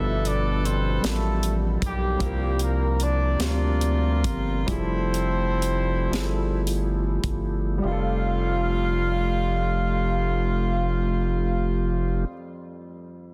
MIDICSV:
0, 0, Header, 1, 6, 480
1, 0, Start_track
1, 0, Key_signature, -1, "major"
1, 0, Tempo, 782269
1, 1352, Time_signature, 6, 3, 24, 8
1, 1353, Tempo, 807537
1, 2313, Tempo, 869565
1, 2793, Tempo, 940439
1, 3273, Tempo, 1039861
1, 3753, Tempo, 1185771
1, 4233, Tempo, 1276596
1, 6295, End_track
2, 0, Start_track
2, 0, Title_t, "Horn section"
2, 0, Program_c, 0, 61
2, 0, Note_on_c, 0, 64, 81
2, 0, Note_on_c, 0, 69, 66
2, 0, Note_on_c, 0, 71, 65
2, 0, Note_on_c, 0, 76, 88
2, 160, Note_off_c, 0, 64, 0
2, 160, Note_off_c, 0, 76, 0
2, 167, Note_on_c, 0, 62, 74
2, 167, Note_on_c, 0, 74, 81
2, 400, Note_off_c, 0, 62, 0
2, 400, Note_off_c, 0, 74, 0
2, 404, Note_on_c, 0, 60, 65
2, 404, Note_on_c, 0, 72, 70
2, 616, Note_off_c, 0, 71, 0
2, 619, Note_off_c, 0, 69, 0
2, 638, Note_off_c, 0, 60, 0
2, 638, Note_off_c, 0, 72, 0
2, 647, Note_on_c, 0, 57, 65
2, 647, Note_on_c, 0, 69, 71
2, 954, Note_off_c, 0, 57, 0
2, 954, Note_off_c, 0, 69, 0
2, 1136, Note_on_c, 0, 55, 76
2, 1136, Note_on_c, 0, 67, 83
2, 1137, Note_on_c, 0, 58, 59
2, 1574, Note_off_c, 0, 55, 0
2, 1574, Note_off_c, 0, 67, 0
2, 1604, Note_off_c, 0, 58, 0
2, 1604, Note_on_c, 0, 58, 64
2, 1604, Note_on_c, 0, 70, 69
2, 1817, Note_off_c, 0, 58, 0
2, 1817, Note_off_c, 0, 70, 0
2, 1837, Note_on_c, 0, 62, 64
2, 1837, Note_on_c, 0, 74, 70
2, 2072, Note_off_c, 0, 62, 0
2, 2072, Note_off_c, 0, 74, 0
2, 2075, Note_on_c, 0, 65, 57
2, 2081, Note_on_c, 0, 62, 65
2, 2081, Note_on_c, 0, 70, 51
2, 2081, Note_on_c, 0, 74, 70
2, 2534, Note_off_c, 0, 62, 0
2, 2534, Note_off_c, 0, 74, 0
2, 2775, Note_off_c, 0, 65, 0
2, 2778, Note_off_c, 0, 70, 0
2, 2795, Note_on_c, 0, 60, 82
2, 2795, Note_on_c, 0, 72, 89
2, 2799, Note_on_c, 0, 64, 67
2, 2800, Note_on_c, 0, 69, 68
2, 3736, Note_off_c, 0, 60, 0
2, 3736, Note_off_c, 0, 72, 0
2, 3738, Note_off_c, 0, 64, 0
2, 3738, Note_off_c, 0, 69, 0
2, 4233, Note_on_c, 0, 65, 68
2, 4233, Note_on_c, 0, 77, 74
2, 5890, Note_off_c, 0, 65, 0
2, 5890, Note_off_c, 0, 77, 0
2, 6295, End_track
3, 0, Start_track
3, 0, Title_t, "Upright piano"
3, 0, Program_c, 1, 0
3, 0, Note_on_c, 1, 43, 56
3, 0, Note_on_c, 1, 47, 65
3, 0, Note_on_c, 1, 55, 69
3, 0, Note_on_c, 1, 65, 61
3, 0, Note_on_c, 1, 69, 77
3, 31, Control_c, 1, 64, 127
3, 579, Note_off_c, 1, 55, 0
3, 584, Note_off_c, 1, 65, 0
3, 588, Note_off_c, 1, 69, 0
3, 602, Note_off_c, 1, 47, 0
3, 609, Note_off_c, 1, 43, 0
3, 619, Note_on_c, 1, 55, 57
3, 628, Note_on_c, 1, 47, 47
3, 635, Note_on_c, 1, 65, 46
3, 643, Note_on_c, 1, 70, 45
3, 677, Note_off_c, 1, 70, 0
3, 681, Note_on_c, 1, 83, 57
3, 1295, Note_off_c, 1, 55, 0
3, 1299, Note_off_c, 1, 47, 0
3, 1303, Note_off_c, 1, 65, 0
3, 1326, Note_off_c, 1, 83, 0
3, 1340, Note_on_c, 1, 55, 67
3, 1345, Note_on_c, 1, 60, 66
3, 1350, Note_on_c, 1, 48, 53
3, 1355, Note_on_c, 1, 65, 63
3, 1360, Note_on_c, 1, 70, 70
3, 1361, Control_c, 1, 64, 0
3, 1470, Control_c, 1, 64, 127
3, 2009, Note_off_c, 1, 55, 0
3, 2011, Note_off_c, 1, 60, 0
3, 2016, Note_off_c, 1, 65, 0
3, 2018, Note_off_c, 1, 70, 0
3, 2041, Note_off_c, 1, 48, 0
3, 2053, Note_on_c, 1, 55, 55
3, 2062, Note_on_c, 1, 60, 46
3, 2067, Note_on_c, 1, 65, 49
3, 2075, Note_on_c, 1, 67, 55
3, 2735, Note_off_c, 1, 55, 0
3, 2739, Note_off_c, 1, 60, 0
3, 2741, Note_off_c, 1, 65, 0
3, 2745, Note_off_c, 1, 67, 0
3, 2777, Note_on_c, 1, 55, 64
3, 2781, Note_on_c, 1, 64, 61
3, 2787, Note_on_c, 1, 53, 61
3, 2794, Note_on_c, 1, 68, 59
3, 2800, Control_c, 1, 64, 0
3, 2828, Note_on_c, 1, 69, 68
3, 2832, Note_off_c, 1, 68, 0
3, 2892, Control_c, 1, 64, 127
3, 3449, Note_off_c, 1, 55, 0
3, 3451, Note_off_c, 1, 64, 0
3, 3454, Note_off_c, 1, 53, 0
3, 3472, Note_off_c, 1, 69, 0
3, 3494, Note_on_c, 1, 55, 60
3, 3500, Note_on_c, 1, 64, 60
3, 3505, Note_on_c, 1, 53, 55
3, 3509, Note_on_c, 1, 68, 53
3, 3538, Note_on_c, 1, 69, 65
3, 3547, Note_off_c, 1, 68, 0
3, 4174, Note_off_c, 1, 55, 0
3, 4177, Note_off_c, 1, 64, 0
3, 4179, Note_off_c, 1, 53, 0
3, 4193, Note_off_c, 1, 69, 0
3, 4202, Note_on_c, 1, 55, 61
3, 4220, Note_on_c, 1, 67, 55
3, 4231, Note_on_c, 1, 41, 57
3, 4238, Note_on_c, 1, 65, 53
3, 4239, Control_c, 1, 64, 0
3, 4255, Note_on_c, 1, 69, 71
3, 4305, Control_c, 1, 64, 127
3, 5862, Note_off_c, 1, 55, 0
3, 5878, Note_off_c, 1, 67, 0
3, 5889, Note_off_c, 1, 41, 0
3, 5895, Note_off_c, 1, 65, 0
3, 5912, Note_off_c, 1, 69, 0
3, 6295, End_track
4, 0, Start_track
4, 0, Title_t, "Tonewheel organ"
4, 0, Program_c, 2, 16
4, 0, Note_on_c, 2, 47, 44
4, 0, Note_on_c, 2, 53, 51
4, 0, Note_on_c, 2, 67, 54
4, 0, Note_on_c, 2, 69, 49
4, 1321, Note_off_c, 2, 47, 0
4, 1321, Note_off_c, 2, 53, 0
4, 1321, Note_off_c, 2, 69, 0
4, 1322, Note_off_c, 2, 67, 0
4, 1330, Note_on_c, 2, 58, 47
4, 1330, Note_on_c, 2, 67, 55
4, 1336, Note_on_c, 2, 53, 58
4, 1338, Note_on_c, 2, 60, 48
4, 2761, Note_off_c, 2, 58, 0
4, 2761, Note_off_c, 2, 67, 0
4, 2763, Note_off_c, 2, 53, 0
4, 2764, Note_off_c, 2, 60, 0
4, 2783, Note_on_c, 2, 53, 55
4, 2785, Note_on_c, 2, 57, 50
4, 2786, Note_on_c, 2, 67, 58
4, 2789, Note_on_c, 2, 64, 47
4, 4214, Note_off_c, 2, 53, 0
4, 4215, Note_off_c, 2, 57, 0
4, 4215, Note_off_c, 2, 67, 0
4, 4216, Note_off_c, 2, 64, 0
4, 4226, Note_on_c, 2, 57, 60
4, 4226, Note_on_c, 2, 65, 61
4, 4227, Note_on_c, 2, 67, 73
4, 4229, Note_on_c, 2, 53, 60
4, 5884, Note_off_c, 2, 57, 0
4, 5884, Note_off_c, 2, 65, 0
4, 5884, Note_off_c, 2, 67, 0
4, 5886, Note_off_c, 2, 53, 0
4, 6295, End_track
5, 0, Start_track
5, 0, Title_t, "Analog synth bass"
5, 0, Program_c, 3, 38
5, 0, Note_on_c, 3, 31, 99
5, 610, Note_off_c, 3, 31, 0
5, 637, Note_on_c, 3, 33, 81
5, 1090, Note_off_c, 3, 33, 0
5, 1114, Note_on_c, 3, 35, 73
5, 1334, Note_off_c, 3, 35, 0
5, 1354, Note_on_c, 3, 36, 98
5, 2043, Note_off_c, 3, 36, 0
5, 2060, Note_on_c, 3, 38, 96
5, 2547, Note_on_c, 3, 31, 70
5, 2555, Note_off_c, 3, 38, 0
5, 2772, Note_off_c, 3, 31, 0
5, 2788, Note_on_c, 3, 29, 96
5, 3486, Note_off_c, 3, 29, 0
5, 3496, Note_on_c, 3, 31, 85
5, 3964, Note_off_c, 3, 31, 0
5, 3982, Note_on_c, 3, 31, 69
5, 4216, Note_off_c, 3, 31, 0
5, 4227, Note_on_c, 3, 29, 87
5, 5885, Note_off_c, 3, 29, 0
5, 6295, End_track
6, 0, Start_track
6, 0, Title_t, "Drums"
6, 154, Note_on_c, 9, 42, 41
6, 216, Note_off_c, 9, 42, 0
6, 402, Note_on_c, 9, 42, 44
6, 463, Note_off_c, 9, 42, 0
6, 638, Note_on_c, 9, 42, 64
6, 642, Note_on_c, 9, 38, 87
6, 699, Note_off_c, 9, 42, 0
6, 703, Note_off_c, 9, 38, 0
6, 878, Note_on_c, 9, 42, 48
6, 939, Note_off_c, 9, 42, 0
6, 1117, Note_on_c, 9, 36, 77
6, 1119, Note_on_c, 9, 42, 45
6, 1178, Note_off_c, 9, 36, 0
6, 1180, Note_off_c, 9, 42, 0
6, 1352, Note_on_c, 9, 36, 85
6, 1353, Note_on_c, 9, 42, 63
6, 1412, Note_off_c, 9, 36, 0
6, 1412, Note_off_c, 9, 42, 0
6, 1584, Note_on_c, 9, 42, 45
6, 1644, Note_off_c, 9, 42, 0
6, 1824, Note_on_c, 9, 42, 43
6, 1884, Note_off_c, 9, 42, 0
6, 2062, Note_on_c, 9, 42, 64
6, 2066, Note_on_c, 9, 38, 85
6, 2122, Note_off_c, 9, 42, 0
6, 2125, Note_off_c, 9, 38, 0
6, 2309, Note_on_c, 9, 42, 46
6, 2365, Note_off_c, 9, 42, 0
6, 2547, Note_on_c, 9, 36, 81
6, 2548, Note_on_c, 9, 42, 48
6, 2602, Note_off_c, 9, 36, 0
6, 2603, Note_off_c, 9, 42, 0
6, 2787, Note_on_c, 9, 36, 78
6, 2787, Note_on_c, 9, 42, 61
6, 2838, Note_off_c, 9, 42, 0
6, 2839, Note_off_c, 9, 36, 0
6, 3023, Note_on_c, 9, 42, 40
6, 3074, Note_off_c, 9, 42, 0
6, 3269, Note_on_c, 9, 42, 40
6, 3315, Note_off_c, 9, 42, 0
6, 3505, Note_on_c, 9, 42, 63
6, 3508, Note_on_c, 9, 38, 87
6, 3551, Note_off_c, 9, 42, 0
6, 3554, Note_off_c, 9, 38, 0
6, 3753, Note_on_c, 9, 42, 49
6, 3793, Note_off_c, 9, 42, 0
6, 3982, Note_on_c, 9, 36, 80
6, 3982, Note_on_c, 9, 42, 46
6, 4023, Note_off_c, 9, 36, 0
6, 4023, Note_off_c, 9, 42, 0
6, 6295, End_track
0, 0, End_of_file